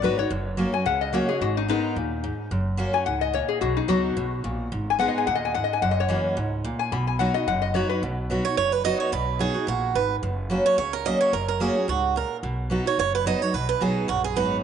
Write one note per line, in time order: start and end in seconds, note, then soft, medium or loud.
0.00 0.27 G#1 medium
0.00 0.28 F#2 medium
0.00 0.17 F#3 medium
0.00 0.18 B3 medium
0.00 0.18 D#4 medium
0.04 0.17 F#4 loud
0.04 0.18 B4 loud
0.18 0.31 D#4 medium
0.18 0.30 F#4 medium
0.18 0.31 C#5 loud
0.30 0.64 F#1 medium
0.30 0.83 F#2 medium
0.57 0.73 F#3 medium
0.57 0.73 A#3 loud
0.57 0.73 C#4 medium
0.57 0.71 F#4 medium
0.72 0.86 C#4 soft
0.72 0.85 F#4 medium
0.72 0.86 G#5 loud
0.86 1.20 C#2 medium
0.86 1.39 C#3 medium
0.86 1.01 F#5 loud
1.01 1.13 D#5 loud
1.13 1.28 F#3 medium
1.13 1.28 A#3 medium
1.13 1.29 C#4 medium
1.13 1.27 F#4 loud
1.13 1.28 C#5 loud
1.29 1.42 C#4 soft
1.29 1.41 F#4 medium
1.29 1.41 G#4 medium
1.41 1.75 G#1 loud
1.41 1.94 G#2 medium
1.41 1.56 F#4 loud
1.57 1.68 D#4 medium
1.68 1.95 G#3 medium
1.68 1.95 B3 loud
1.68 2.49 D#4 loud
1.68 1.96 D#4 medium
1.68 1.96 A#4 medium
1.96 2.30 D#2 medium
1.96 2.23 A#2 medium
2.24 2.50 G#2 medium
2.51 2.85 F#1 medium
2.51 3.04 F#2 loud
2.77 2.93 F#3 medium
2.77 2.93 A#3 medium
2.77 2.94 C#4 medium
2.77 2.92 F#4 loud
2.93 3.07 C#4 soft
2.93 3.06 F#4 medium
2.93 3.05 G#5 loud
3.06 3.40 C#2 medium
3.06 3.33 G#2 medium
3.06 3.21 F#5 medium
3.21 3.33 D#5 loud
3.34 3.60 A#2 medium
3.34 3.49 C#5 loud
3.49 3.61 G#4 medium
3.61 3.78 B1 loud
3.61 4.14 B2 medium
3.61 3.76 F#4 medium
3.77 3.89 D#4 medium
3.88 4.12 C#2 medium
3.88 4.15 F#3 loud
3.88 4.15 B3 medium
3.88 4.16 D#4 medium
3.88 4.69 F#4 loud
3.88 4.16 F#4 medium
4.16 4.40 B1 medium
4.16 4.43 B2 loud
4.44 4.67 A#1 medium
4.44 4.70 A#2 medium
4.72 5.05 G#1 medium
4.72 5.24 G#2 medium
4.90 4.99 G#5 loud
4.99 5.25 G#3 medium
4.99 5.26 B3 loud
4.99 5.26 D#4 loud
4.99 5.26 G#4 loud
4.99 5.08 F#5 loud
5.08 5.17 D#5 loud
5.18 5.26 G#5 medium
5.27 5.61 D#2 medium
5.27 5.53 A#2 medium
5.27 5.36 F#5 loud
5.35 5.45 D#5 loud
5.45 5.54 G#5 loud
5.54 5.81 G#2 medium
5.54 5.63 F#5 loud
5.64 5.73 D#5 medium
5.73 5.82 G#5 loud
5.82 6.15 F#1 medium
5.82 6.35 F#2 loud
5.82 5.91 F#5 loud
5.91 6.00 D#5 loud
6.00 6.27 C#5 loud
6.09 6.35 E3 medium
6.09 6.36 A#3 loud
6.09 6.36 C#4 medium
6.09 6.36 F#4 medium
6.37 6.71 C#2 medium
6.37 6.63 G#2 medium
6.64 6.91 A#2 medium
6.79 6.91 G#5 loud
6.92 7.26 B1 loud
6.92 7.45 B2 loud
6.92 7.07 B5 loud
7.07 7.19 G#5 medium
7.19 7.34 F#3 medium
7.19 7.34 B3 loud
7.19 7.35 D#4 loud
7.19 7.33 F#4 loud
7.19 7.34 F#5 loud
7.34 7.47 D#4 soft
7.34 7.46 F#4 medium
7.34 7.47 D#5 loud
7.47 7.81 F#1 medium
7.47 8.00 F#2 loud
7.47 7.62 F#5 medium
7.62 7.74 D#5 medium
7.74 7.89 F#3 loud
7.74 7.89 B3 medium
7.74 7.90 D#4 loud
7.74 7.88 F#4 loud
7.74 7.89 C#5 medium
7.89 8.03 D#4 soft
7.89 8.01 F#4 medium
7.89 8.02 B4 loud
8.02 8.36 B1 medium
8.02 8.55 B2 medium
8.30 8.44 F#3 medium
8.30 8.45 B3 medium
8.30 8.45 D#4 medium
8.30 8.44 F#4 medium
8.45 8.58 D#4 soft
8.45 8.57 F#4 medium
8.45 8.56 C#5 medium
8.57 8.91 F#1 medium
8.57 9.10 F#2 medium
8.57 8.72 C#5 loud
8.72 8.84 B4 loud
8.84 9.11 F#3 medium
8.84 9.11 B3 medium
8.84 9.12 D#4 medium
8.84 9.12 F#4 loud
8.84 9.00 D#5 loud
9.00 9.12 C#5 medium
9.12 9.46 B1 medium
9.12 9.65 B2 medium
9.12 9.38 B4 loud
9.39 9.54 F#3 medium
9.39 9.55 B3 medium
9.39 9.55 D#4 medium
9.39 9.53 F#4 medium
9.39 9.68 G#4 medium
9.54 9.68 D#4 soft
9.54 9.67 F#4 medium
9.67 9.91 A#1 medium
9.67 9.94 A#2 medium
9.67 9.96 F#4 medium
9.95 10.18 G#1 medium
9.95 10.22 G#2 medium
9.95 10.15 B4 medium
10.23 10.56 F#1 medium
10.23 10.75 F#2 loud
10.50 10.76 F#3 medium
10.50 10.77 A#3 medium
10.50 10.77 C#4 medium
10.50 10.77 F#4 medium
10.66 10.77 C#5 medium
10.77 11.11 C#2 medium
10.77 11.31 C#3 medium
10.77 10.92 C#5 loud
10.93 11.05 A#4 loud
11.05 11.32 F#3 medium
11.05 11.32 A#3 medium
11.05 11.32 C#4 medium
11.05 11.33 F#4 loud
11.05 11.20 D#5 loud
11.21 11.33 C#5 medium
11.33 11.67 F#1 medium
11.33 11.86 F#2 medium
11.33 11.47 A#4 medium
11.48 11.61 A#4 medium
11.60 11.75 F#3 medium
11.60 11.75 A#3 medium
11.60 11.76 C#4 medium
11.60 11.74 F#4 loud
11.60 11.89 G#4 medium
11.75 11.88 C#4 soft
11.75 11.87 F#4 medium
11.88 12.22 C#2 medium
11.88 12.14 G#2 medium
11.88 12.14 F#4 medium
12.16 12.42 A#2 medium
12.16 12.36 A#4 medium
12.43 12.77 B1 medium
12.43 12.96 B2 medium
12.70 12.85 F#3 medium
12.70 12.85 B3 medium
12.70 12.86 D#4 medium
12.70 12.85 F#4 medium
12.86 12.99 D#4 soft
12.86 12.98 F#4 medium
12.86 12.98 C#5 medium
12.98 13.32 F#1 medium
12.98 13.51 F#2 medium
12.98 13.13 C#5 loud
13.15 13.27 B4 medium
13.26 13.40 F#3 medium
13.26 13.41 B3 medium
13.26 13.41 D#4 medium
13.26 13.40 F#4 medium
13.26 13.42 D#5 loud
13.41 13.54 D#4 medium
13.41 13.53 F#4 medium
13.41 13.54 C#5 loud
13.53 13.70 B1 medium
13.53 14.07 B2 medium
13.53 13.68 B4 loud
13.69 13.82 B4 medium
13.81 14.04 B1 medium
13.81 14.07 F#3 medium
13.81 14.08 B3 medium
13.81 14.08 D#4 medium
13.81 14.08 F#4 medium
13.81 14.08 G#4 medium
14.08 14.32 A#1 medium
14.08 14.61 F#2 medium
14.08 14.23 F#4 medium
14.24 14.37 G#4 medium
14.36 14.60 G#1 medium
14.36 14.62 F#3 medium
14.36 14.63 B3 medium
14.36 14.63 D#4 medium
14.36 14.63 F#4 medium
14.36 14.56 B4 medium